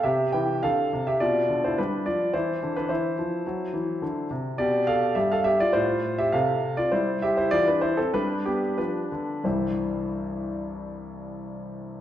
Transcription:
<<
  \new Staff \with { instrumentName = "Grand piano" } { \time 4/4 \key c \major \tempo 4 = 101 <g' e''>8 <b' g''>8 <a' f''>8. <g' e''>16 <f' d''>8. <e' c''>16 <d' b'>8 <f' d''>8 | <e' c''>8. <d' b'>16 <e' c''>2~ <e' c''>8 r8 | <g' d''>8 <a' f''>8 <g' e''>16 <a' f''>16 <g' e''>16 <f' d''>16 <f' c''>8. <g' e''>16 <a' f''>8. <f' d''>16 | <e' c''>8 <g' e''>16 <e' c''>16 <f' d''>16 <d' b'>16 <e' c''>16 <c' a'>16 <d' b'>8 <b g'>8 <d' b'>4 |
<c, g, e g c' e' c''>1 | }
  \new Staff \with { instrumentName = "Grand piano" } { \clef bass \time 4/4 \key c \major c8 e8 d8 c8 b,8 d8 g8 f8 | e8 d8 e8 f8 fis8 e8 d8 c8 | b,4 g,4 a,4 c4 | g4 e4 g4 f8 d8 |
r1 | }
>>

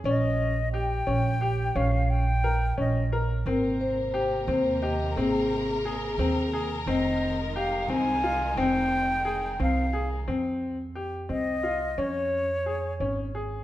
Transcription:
<<
  \new Staff \with { instrumentName = "Flute" } { \time 5/8 \key f \minor \tempo 4 = 88 ees''4 g''4. | f''8 g''4 ees''8. r16 | r2 r8 | r2 r8 |
ees''4 f''8 aes''4 | g''4. f''8. r16 | r4. ees''4 | des''2 r8 | }
  \new Staff \with { instrumentName = "Vibraphone" } { \time 5/8 \key f \minor r2 r8 | r2 r8 | bes'8 c''4 c''8 ees''8 | aes'2 r8 |
r2 r8 | r2 r8 | r2 r8 | r2 r8 | }
  \new Staff \with { instrumentName = "Grand piano" } { \time 5/8 \key f \minor des'4 g'8 des'8 g'8 | des'4 bes'8 des'8 bes'8 | c'4 g'8 c'8 g'8 | c'4 aes'8 c'8 aes'8 |
c'4 g'8 c'8 f'8 | c'4 aes'8 c'8 aes'8 | c'4 g'8 c'8 f'8 | des'4 aes'8 des'8 aes'8 | }
  \new Staff \with { instrumentName = "String section" } { \clef bass \time 5/8 \key f \minor << { r2 r8 | r2 r8 | bes'2~ bes'8~ | bes'2~ bes'8~ |
bes'2~ bes'8~ | bes'2~ bes'8 | r2 r8 | r2 r8 | } \\ { r2 r8 | r2 r8 | <c bes>2~ <c bes>8~ | <c bes>2~ <c bes>8 |
<ees aes>2~ <ees aes>8~ | <ees aes>2~ <ees aes>8 | r2 r8 | r2 r8 | } >> }
  \new Staff \with { instrumentName = "Upright bass" } { \clef bass \time 5/8 \key f \minor bes,,4. bes,,4 | bes,,4. bes,,4 | aes,,4. ees,4 | aes,,4. ees,4 |
f,,4. c,4 | f,,4. c,4 | f,4. c,4 | f,4. aes,,4 | }
>>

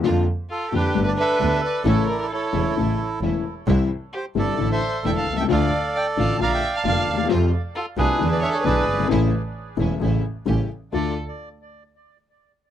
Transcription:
<<
  \new Staff \with { instrumentName = "Bandoneon" } { \time 4/4 \key d \minor \tempo 4 = 132 << { r4 a'8 b'8. d''16 e''4 d''8 | cis''8 d''16 d''16 cis''4 r2 | r4 c''8 d''8. e''8. g''16 a''8 g''16 | f''4 g''8 a''8 bes''16 g''8 a''16 a''8. r16 |
r4 a'8 b'8. d''16 e''16 cis''16 d''4 | r1 | d''8 r2. r8 | } \\ { r4. d'4 <a' b'>4. | <e' a'>4 <e' a'>2 r4 | r4. a'8. a'4.~ a'16 | <a' d''>2 <d'' f''>4 <d'' f''>4 |
r4. <d' gis'>4. <gis' b'>4 | r1 | r1 | } >> }
  \new Staff \with { instrumentName = "Violin" } { \time 4/4 \key d \minor r4 f'8 g'8. b'16 b'4 b'8 | a'8 bes'16 bes'16 a'4 r2 | r4 g'8 a'8. c''8. e''16 f''8 e''16 | d''4 d''8 f''8 f''16 e''8 f''16 f''8. r16 |
r4 f'8 gis'8. b'16 cis''16 a'16 b'4 | r1 | a'8 r2. r8 | }
  \new Staff \with { instrumentName = "String section" } { \time 4/4 \key d \minor <bes d' f'>8 r4 <bes d' f'>8 <a b g'>8 r8 <a b g'>8 r8 | <a cis' e'>8 r4 <a cis' e'>8 <a cis' e'>8 r8 <a cis' e'>8 r8 | <g c' e'>8 r4 <g c' e'>8 <a d' e'>8 r8 <a d' e'>8 r8 | <a d' f'>8 r4 <a d' f'>8 <bes d' f'>8 r8 <bes d' f'>8 r8 |
<a c' f'>8 r4 <a c' f'>8 <gis d' e'>8 r8 <gis d' e'>8 r8 | <a cis' e'>8 r4 <a cis' e'>8 <a cis' e'>8 r8 <a cis' g'>8 r8 | <a d' f'>8 r2. r8 | }
  \new Staff \with { instrumentName = "Upright piano" } { \clef bass \time 4/4 \key d \minor <f, d f bes f'>8 r4 <f, d f bes f'>8 <g,, g, d a b g'>8 r8 <d, d a b g'>8 r8 | <a,, a, cis e a e'>8 r4 <e,, e, cis e a e'>8 <a,, a, cis e a e'>8 r8 <e,, e, cis e a e'>8 r8 | <c, c e g e'>8 r4 <g,, g, c e g e'>8 <a,, a, d e a e'>8 r8 <e,, e, d e a e'>8 r32 b,,32 c,32 cis,32 | <d, d f a f'>8 r4 <a,, a, d f a f'>8 <bes,, bes, d f bes f'>8 r8 <f,, f, d f bes f'>8 r32 d,32 ees,32 e,32 |
<f, c f a f'>8 r4 <c, c f a f'>8 <e, d e gis b e'>8 r8 <b,, b, d gis b e'>8 r32 fis,,32 g,,32 gis,,32 | <a,, a, cis e a e'>8 r4 <e,, e, cis e a e'>8 <a,, a, cis e a e'>8 r8 <a,, a, cis g a e'>8 r8 | <d, a d' f'>8 r2. r8 | }
  \new Staff \with { instrumentName = "Double bass" } { \clef bass \time 4/4 \key d \minor f,8 r4 f,8 g,,8 r8 d,8 r8 | a,,8 r4 e,,8 a,,8 r8 e,,8 r8 | c,8 r4 g,,8 a,,8 r8 e,,8 c,8 | d,8 r4 a,,8 bes,,8 r8 f,,8 ees,8 |
f,8 r4 c,8 e,8 r8 b,,8 g,,8 | a,,8 r4 e,,8 a,,8 r8 a,,8 r8 | d,8 r2. r8 | }
>>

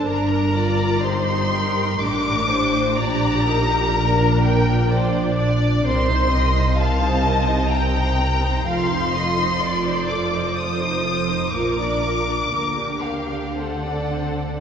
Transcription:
<<
  \new Staff \with { instrumentName = "Violin section" } { \time 3/4 \key g \minor \tempo 4 = 62 bes''4 c'''4 d'''4 | bes''4. g''8 r4 | c'''4 a''4 bes''4 | c'''4. d'''8 ees'''4 |
d'''4. f''8 fis''4 | }
  \new Staff \with { instrumentName = "Violin section" } { \time 3/4 \key g \minor bes'8 d''8 c''8 bes'8 bes'8 c''8 | d''8 bes'4. c''8 d''8 | c''8 ees''8 f''8 ees''8 g''4 | f''8 ees''8 d''4 c''8 c''8 |
bes'4 bes'8 g'8 a'4 | }
  \new Staff \with { instrumentName = "Viola section" } { \time 3/4 \key g \minor << { bes'4 g'2 | g'4 bes'8 bes'8 d''4 | bes'16 c''16 bes'16 c''16 bes'16 c''16 bes'16 c''16 bes'16 c''16 bes'16 c''16 | a'16 c''16 a'16 c''16 a'16 c''16 a'16 c''16 a'16 c''16 a'16 c''16 |
bes'16 d''16 bes'16 d''16 bes'16 g'16 bes'16 g'16 c''16 d''16 c''16 d''16 | } \\ { d'8 f'8 ees'4 d'4 | d'8 ees'8 d'4 d'4 | c'16 ees'16 c'16 ees'16 c'16 ees'16 c'16 ees'16 c'16 ees'16 c'16 ees'16 | f'16 ees'16 f'16 ees'16 f'16 ees'16 f'16 ees'16 f'16 ees'16 f'16 ees'16 |
f'16 d'16 f'16 d'16 bes16 d'16 bes16 d'16 c'16 d'16 c'16 d'16 | } >> }
  \new Staff \with { instrumentName = "Cello section" } { \clef bass \time 3/4 \key g \minor g,2 a,4 | bes,2. | c2. | f,2. |
bes,4 d2 | }
  \new Staff \with { instrumentName = "Double bass section" } { \clef bass \time 3/4 \key g \minor g,,2 a,,4 | bes,,2. | c,2. | f,,2. |
bes,,4 d,2 | }
>>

